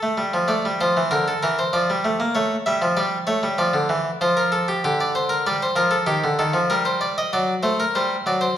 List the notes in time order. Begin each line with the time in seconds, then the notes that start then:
Already playing: A4
0.03 A3
0.17 G3
0.34 F3
0.48 A3 D5
0.65 G3
0.81 F3 C5
0.97 E3
1.11 D3 A#4
1.28 A4
1.43 E3 A#4
1.59 C5
1.73 F3 D5
1.90 G3
2.05 A3
2.20 A#3
2.35 A3 C#5
2.66 G3 E5
2.82 F3
2.97 G3 D5
3.27 A3 C#5
3.43 G3
3.58 F3 D5
3.73 D3
3.89 E3
4.21 F3 C5
4.37 A#4
4.52 A4
4.68 G4
4.84 D3 G4
5.00 D5
5.15 C5
5.29 A#4
5.47 G3 D5
5.62 C5
5.76 F3 A#4
5.91 A4
6.07 D#3 G4
6.24 D3
6.39 D#3 A4
6.53 F3
6.70 G3 A#4
6.85 C5
7.01 D5
7.18 D#5
7.33 F#3 D5
7.63 A3 C5
7.80 A#4
7.95 G3 C5
8.26 F#3 D5
8.41 C5